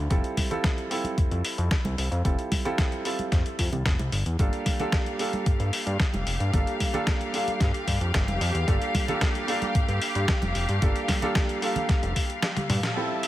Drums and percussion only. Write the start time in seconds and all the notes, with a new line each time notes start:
0.11 kick, closed hi-hat
0.24 closed hi-hat
0.37 kick, open hi-hat, high conga
0.51 closed hi-hat, low conga
0.64 kick, snare, closed hi-hat
0.78 closed hi-hat
0.91 open hi-hat
1.04 closed hi-hat, high conga
1.18 kick, closed hi-hat
1.31 closed hi-hat
1.45 open hi-hat
1.58 closed hi-hat
1.71 kick, snare, closed hi-hat
1.85 closed hi-hat, high conga
1.98 open hi-hat
2.12 closed hi-hat
2.25 kick, closed hi-hat
2.39 closed hi-hat
2.52 kick, open hi-hat, high conga
2.65 closed hi-hat, low conga
2.78 kick, snare, closed hi-hat
2.92 closed hi-hat
3.05 open hi-hat
3.19 closed hi-hat, high conga
3.32 kick, snare, closed hi-hat
3.46 closed hi-hat
3.59 kick, open hi-hat
3.73 closed hi-hat, low conga
3.86 kick, snare, closed hi-hat
3.99 closed hi-hat, high conga
4.12 open hi-hat
4.26 closed hi-hat
4.39 kick, closed hi-hat
4.53 closed hi-hat
4.66 kick, open hi-hat, high conga
4.80 closed hi-hat, low conga
4.92 kick, snare, closed hi-hat
5.06 closed hi-hat
5.19 open hi-hat
5.33 closed hi-hat, high conga
5.46 kick, closed hi-hat
5.60 closed hi-hat
5.73 open hi-hat
5.87 closed hi-hat
6.00 kick, snare, closed hi-hat
6.14 closed hi-hat, high conga
6.27 open hi-hat
6.40 closed hi-hat
6.54 kick, closed hi-hat
6.67 closed hi-hat
6.80 kick, open hi-hat, high conga
6.94 closed hi-hat, low conga
7.07 kick, snare, closed hi-hat
7.21 closed hi-hat
7.34 open hi-hat
7.48 closed hi-hat, high conga
7.60 kick, snare, closed hi-hat
7.74 closed hi-hat
7.88 kick, open hi-hat
8.01 closed hi-hat
8.14 kick, snare, closed hi-hat
8.28 closed hi-hat, high conga
8.41 open hi-hat
8.55 closed hi-hat
8.68 kick, closed hi-hat
8.82 closed hi-hat
8.95 kick, open hi-hat, high conga
9.08 closed hi-hat, low conga
9.21 kick, snare, closed hi-hat
9.35 closed hi-hat
9.48 open hi-hat
9.62 closed hi-hat, high conga
9.75 kick, closed hi-hat
9.89 closed hi-hat
10.02 open hi-hat
10.15 closed hi-hat
10.28 kick, snare, closed hi-hat
10.42 closed hi-hat, high conga
10.55 open hi-hat
10.69 closed hi-hat
10.82 kick, closed hi-hat
10.96 closed hi-hat
11.08 kick, snare, open hi-hat, high conga
11.22 closed hi-hat, low conga
11.35 kick, snare, closed hi-hat
11.49 closed hi-hat
11.62 open hi-hat
11.76 closed hi-hat, high conga, low conga
11.89 kick, snare, closed hi-hat
12.03 closed hi-hat
12.16 kick, open hi-hat
12.30 closed hi-hat
12.42 snare, closed hi-hat
12.57 closed hi-hat, high tom, high conga
12.70 open hi-hat, mid tom
12.83 snare, closed hi-hat
13.23 open hi-hat